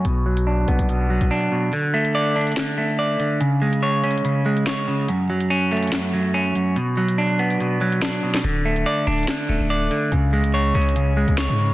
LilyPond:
<<
  \new Staff \with { instrumentName = "Clean electric guitar" } { \clef bass \time 4/4 \key b \dorian \tempo 4 = 143 b,8 fis8 d'8 b8 b,8 fis8 d'8 b,8 | d8 a8 d''8 d'4 a8 d''8 d8 | cis8 gis8 cis''8 cis'8 cis8 gis8 cis''8 cis8 | fis,8 fis8 cis'8 a8 fis,8 fis8 cis'8 fis,8 |
b,8 fis8 d'8 b8 b,8 fis8 d'8 b,8 | d8 a8 d''8 d'8 d8 a8 d''8 d8 | cis8 gis8 cis''8 cis'8 cis8 gis8 cis''8 cis8 | }
  \new Staff \with { instrumentName = "808-style bass" } { \clef bass \time 4/4 \key b \dorian b,,4. b,,16 b,,4 b,,16 r4 | r1 | r1 | r1 |
r1 | d,,4 r8 d,,8 r8 d,,16 d,,8. r8 | cis,4. cis,4~ cis,16 cis,8 gis,8. | }
  \new DrumStaff \with { instrumentName = "Drums" } \drummode { \time 4/4 hh8. hh16 r8 hh16 hh16 hh8. hh16 r4 | hh8. hh16 r8 hh32 hh32 hh32 hh32 <hh sn>4 r8 hh8 | hh8. hh16 \tuplet 3/2 { r16 r16 r16 hh16 hh16 hh16 } hh8. hh16 sn16 hh16 hho8 | hh8. hh16 r8 hh32 hh32 hh32 hh32 <hh sn>4 r8 hh8 |
hh8. hh16 r8 hh16 hh16 hh8. hh16 sn16 hh8 sn16 | hh8. hh16 r8 hh32 hh32 hh32 hh32 <hh sn>4 r8 hh8 | hh8. hh16 \tuplet 3/2 { r16 r16 r16 hh16 hh16 hh16 } hh8. hh16 sn16 hh16 hho8 | }
>>